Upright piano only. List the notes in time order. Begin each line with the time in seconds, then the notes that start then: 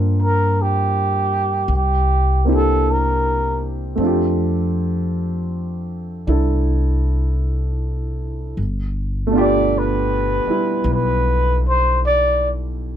Already playing: A#3 C4 D4 F4 A#4
2.45 A#3 C4 D4 E4
2.49 G4
3.96 A3 C4
4.00 D4 F4
4.07 G4
6.27 D4 E4 A4
9.27 B2 A3
9.33 D4 F4
9.38 G4
10.47 G3 E4